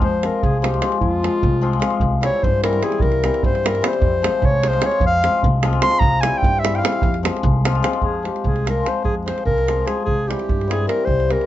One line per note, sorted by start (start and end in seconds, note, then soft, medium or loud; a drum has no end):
0.00 0.27 F2 medium
0.00 0.27 C5 medium
0.00 davul low medium
0.23 0.61 F3 medium
0.23 0.61 G#3 medium
0.23 0.35 C4 medium
0.23 0.36 F4 medium
0.23 0.45 A#4 medium
0.23 davul high medium
0.43 0.78 C2 medium
0.43 0.59 G#4 medium
0.43 davul low medium
0.59 0.80 F3 medium
0.59 0.80 G#3 medium
0.59 0.74 C4 medium
0.59 0.67 G#4 medium
0.64 0.75 F4 medium
0.64 1.00 G4 medium
0.64 davul high medium
0.74 davul high soft
0.81 1.22 F3 medium
0.81 1.22 G#3 medium
0.81 0.93 C4 medium
0.81 0.93 F4 medium
0.81 davul high medium
0.92 davul high soft
1.01 1.27 F2 medium
1.01 1.97 F4 medium
1.01 davul low medium
1.23 1.60 F3 medium
1.23 1.60 G#3 medium
1.23 1.35 C4 medium
1.23 1.36 F4 medium
1.23 davul high medium
1.43 1.78 C2 medium
1.43 davul low medium
1.61 1.78 F3 medium
1.61 1.79 G#3 medium
1.61 1.74 C4 medium
1.61 1.74 F4 medium
1.73 davul high soft
1.80 2.07 F3 medium
1.80 2.07 G#3 medium
1.80 1.93 C4 medium
1.80 1.93 F4 medium
1.80 davul high medium
1.90 davul high soft
2.00 2.26 C2 medium
2.00 davul low medium
2.21 2.62 E3 medium
2.21 2.62 G3 medium
2.21 2.34 C4 medium
2.21 2.34 E4 medium
2.21 2.45 C#5 medium
2.21 davul high medium
2.43 2.79 G2 loud
2.43 2.63 C5 medium
2.43 davul low loud
2.63 2.82 E3 medium
2.63 2.81 G3 medium
2.63 2.75 C4 medium
2.63 2.75 E4 medium
2.63 2.85 A#4 medium
2.63 davul high medium
2.73 davul high soft
2.83 3.23 E3 medium
2.83 3.23 G3 medium
2.83 2.94 C4 medium
2.83 2.94 E4 medium
2.83 3.04 G#4 medium
2.83 davul high medium
2.92 davul high soft
3.00 3.27 C2 medium
3.00 3.44 A#4 loud
3.00 davul low loud
3.12 davul high soft
3.24 3.62 E3 medium
3.24 3.63 G3 medium
3.24 3.36 C4 medium
3.24 3.36 E4 medium
3.24 davul high medium
3.34 davul high soft
3.43 3.79 G2 medium
3.43 3.68 C5 medium
3.43 davul low loud
3.55 davul high soft
3.63 3.80 E3 medium
3.63 3.81 G3 medium
3.63 3.75 C4 medium
3.63 3.76 E4 medium
3.63 3.89 A#4 medium
3.63 davul high medium
3.75 davul high soft
3.81 4.07 E3 medium
3.81 4.07 G3 medium
3.81 3.93 C4 medium
3.81 3.94 E4 medium
3.81 davul high medium
3.88 4.47 C5 medium
3.93 davul high soft
4.02 4.27 F2 medium
4.02 davul low loud
4.22 4.62 F3 medium
4.22 4.62 G#3 medium
4.22 4.35 C4 medium
4.22 4.35 F4 medium
4.22 davul high medium
4.42 4.77 C2 medium
4.42 4.70 C#5 loud
4.42 davul low loud
4.63 4.80 F3 medium
4.63 4.81 G#3 medium
4.63 4.75 C4 medium
4.63 4.75 F4 medium
4.63 davul high medium
4.68 4.88 C5 loud
4.73 davul high soft
4.81 5.21 F3 medium
4.81 5.23 G#3 medium
4.81 4.94 C4 medium
4.81 4.94 F4 medium
4.81 davul high medium
4.86 5.04 C#5 medium
4.91 davul high soft
5.00 5.26 F2 medium
5.00 davul low medium
5.07 5.43 F5 loud
5.22 5.62 F3 medium
5.22 5.62 G#3 medium
5.22 5.35 C4 medium
5.22 5.35 F4 medium
5.22 davul high medium
5.43 5.79 C2 loud
5.43 davul low medium
5.63 5.80 F3 medium
5.63 5.81 G#3 medium
5.63 5.75 C4 medium
5.63 5.76 F4 medium
5.63 davul high medium
5.73 davul high soft
5.82 6.07 F3 medium
5.82 6.07 G#3 medium
5.82 5.94 C4 medium
5.82 5.93 F4 medium
5.82 6.01 C6 loud
5.82 davul high medium
5.91 davul high soft
5.99 6.27 C2 loud
5.99 6.22 A#5 loud
5.99 davul low loud
6.21 6.62 E3 medium
6.21 6.63 G3 medium
6.21 6.39 G#5 medium
6.21 davul high medium
6.25 6.36 C4 medium
6.25 6.36 E4 medium
6.38 6.61 G5 medium
6.43 6.79 G2 loud
6.43 davul low loud
6.59 6.77 E5 loud
6.64 6.81 E3 medium
6.64 6.82 G3 medium
6.64 6.75 C4 medium
6.64 6.76 E4 medium
6.64 davul high medium
6.75 7.22 F5 medium
6.75 6.79 G5 medium
6.75 davul high soft
6.82 7.08 E3 medium
6.82 7.08 G3 medium
6.82 6.94 C4 medium
6.82 6.94 E4 medium
6.82 davul high medium
6.92 davul high soft
7.02 7.28 F2 medium
7.02 davul low loud
7.14 davul high soft
7.23 7.63 F3 medium
7.23 7.64 G#3 medium
7.23 7.35 C4 medium
7.23 7.36 F4 medium
7.23 davul high medium
7.37 davul high soft
7.43 7.79 C2 loud
7.43 davul low loud
7.65 7.81 F3 medium
7.65 7.82 G#3 medium
7.65 7.76 C4 medium
7.65 7.77 F4 loud
7.65 davul high medium
7.75 davul high soft
7.83 8.08 F3 medium
7.83 8.08 G#3 medium
7.83 7.95 C4 medium
7.83 7.95 F4 medium
7.83 davul high medium
7.93 davul high soft
8.02 8.28 F2 medium
8.02 8.25 G#4 medium
8.02 davul low medium
8.22 8.64 F3 soft
8.22 8.65 G#3 medium
8.22 8.36 C4 soft
8.22 8.36 F4 medium
8.22 davul high soft
8.27 8.48 G4 medium
8.36 davul high soft
8.44 8.80 C2 medium
8.44 8.68 G#4 medium
8.44 davul low medium
8.56 davul high soft
8.65 8.82 F3 medium
8.65 8.83 G#3 soft
8.65 8.77 C4 medium
8.65 8.78 F4 medium
8.65 davul high medium
8.69 8.89 A#4 medium
8.83 9.25 F3 medium
8.83 9.25 G#3 soft
8.83 8.96 C4 medium
8.83 8.96 F4 medium
8.83 davul high medium
8.88 9.04 C5 medium
9.04 9.30 F2 medium
9.04 9.15 G#4 medium
9.04 davul low medium
9.26 9.66 F3 medium
9.26 9.66 G#3 soft
9.26 9.39 C4 medium
9.26 9.39 F4 medium
9.26 9.45 C5 medium
9.26 davul high medium
9.38 davul high soft
9.45 9.81 C2 medium
9.45 9.88 A#4 loud
9.45 davul low medium
9.58 davul high soft
9.67 9.84 F3 medium
9.67 9.85 G#3 medium
9.67 9.79 C4 medium
9.67 9.80 F4 medium
9.67 davul high medium
9.85 10.12 F3 medium
9.85 10.11 G#3 soft
9.85 9.98 C4 soft
9.85 9.98 F4 medium
9.85 10.04 G#4 medium
9.85 davul high medium
10.05 10.32 C2 medium
10.05 10.29 G#4 medium
10.05 davul low medium
10.27 10.66 E3 medium
10.27 10.66 G3 medium
10.27 10.40 C4 soft
10.27 10.41 E4 medium
10.27 10.72 G4 medium
10.27 davul high medium
10.39 davul high soft
10.49 10.85 G2 medium
10.49 davul low medium
10.61 davul high soft
10.68 10.86 E3 medium
10.68 10.86 G3 medium
10.68 10.81 C4 medium
10.68 10.81 E4 medium
10.68 10.88 G#4 medium
10.68 davul high medium
10.87 11.28 E3 medium
10.87 11.28 G3 medium
10.87 10.99 C4 medium
10.87 11.00 E4 medium
10.87 11.06 A#4 medium
10.87 davul high medium
11.05 11.33 C2 medium
11.05 11.33 C5 medium
11.05 davul low medium
11.20 davul high soft
11.29 11.46 E3 medium
11.29 11.46 G3 medium
11.29 11.41 C4 medium
11.29 11.42 E4 medium
11.29 11.46 A#4 medium
11.29 davul high soft
11.41 davul high soft